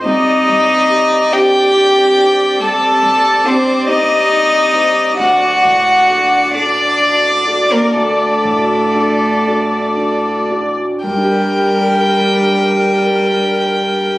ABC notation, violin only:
X:1
M:6/8
L:1/16
Q:3/8=44
K:Gm
V:1 name="Violin"
e6 g6 | a4 c2 e6 | ^f6 d4- d B | A8- A2 z2 |
g12 |]